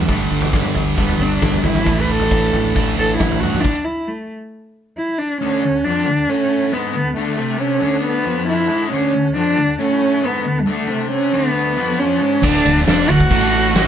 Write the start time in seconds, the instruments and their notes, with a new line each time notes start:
Already playing: distorted electric guitar D4
0.08 fingered electric bass G1, distorted electric guitar G2 D3 G3 B3 D4 G4, cello A3, kick, floor tom
0.31 fingered electric bass G1
0.42 floor tom
0.53 fingered electric bass G2, kick, snare
0.64 mid tom
0.75 fingered electric bass G1, floor tom
0.96 fingered electric bass E1, distorted electric guitar G2 D3 G3, cello B3, kick, floor tom
1.09 floor tom
1.19 fingered electric bass G1, cello D4
1.42 fingered electric bass G1, kick, snare, mid tom
1.53 floor tom
1.64 fingered electric bass G#1, cello E4, floor tom, mid tom
1.75 floor tom
1.86 fingered electric bass A1, distorted electric guitar A2 E3 A3 D4 E4, kick, floor tom
1.91 distorted electric guitar A4
2.02 cello B4
2.09 fingered electric bass A1, cello A4
2.19 floor tom
2.31 fingered electric bass A1, kick
2.53 fingered electric bass A1, floor tom
2.75 fingered electric bass A1, distorted electric guitar A2 E3 A3, kick, floor tom
2.98 fingered electric bass A1, cello A4
3.18 fingered electric bass A1, cello E4, kick, snare, mid tom
3.31 floor tom
3.40 fingered electric bass G2, cello F#4, floor tom
3.53 floor tom
3.61 cello D4, kick, crash
3.85 cello E4
4.08 cello A3
4.97 cello E4
5.19 cello D4
5.41 distorted electric guitar D2 D3, tonewheel organ D3 A4 F#5 A5, cello C#4
5.64 distorted electric guitar D2
5.85 distorted electric guitar F2 F3, cello D4
6.07 distorted electric guitar D2
6.29 distorted electric guitar A2 A3, cello C#4
6.73 distorted electric guitar G#2 G#3, cello B3
6.94 distorted electric guitar D2, cello B3
7.16 distorted electric guitar D2 D3, cello A3
7.38 distorted electric guitar C3 C4
7.60 cello C#4
7.81 distorted electric guitar D2 D3
8.04 cello B3
8.25 distorted electric guitar F2 F3
8.49 cello E4
8.69 distorted electric guitar G#2 G#3
8.91 distorted electric guitar D2 D3, cello C#4
9.14 distorted electric guitar D2
9.35 distorted electric guitar F2 F3, cello D4
9.57 distorted electric guitar D2
9.79 distorted electric guitar A2 A3, cello C#4
10.22 distorted electric guitar G#2 G#3, cello B3
10.45 distorted electric guitar D2
10.61 cello G3
10.66 distorted electric guitar D2 D3, cello A3
10.88 distorted electric guitar C3 C4
11.12 cello C#4
11.33 distorted electric guitar D2 D3, cello B3
11.76 distorted electric guitar F2 F3
12.00 cello C#4
12.21 distorted electric guitar G#2 G#3
12.43 fingered electric bass D1, distorted electric guitar D2 D3, cello D4, kick, crash
12.65 fingered electric bass D1, distorted electric guitar D2, ride
12.77 snare
12.85 fingered electric bass F1, distorted electric guitar F2 F3, cello D4, snare, ride
13.09 fingered electric bass D1, distorted electric guitar D2, cello F#4, ride
13.20 kick
13.30 fingered electric bass A1, distorted electric guitar A2 A3, kick, ride
13.53 ride
13.74 fingered electric bass G#1, distorted electric guitar G#2 G#3, snare, ride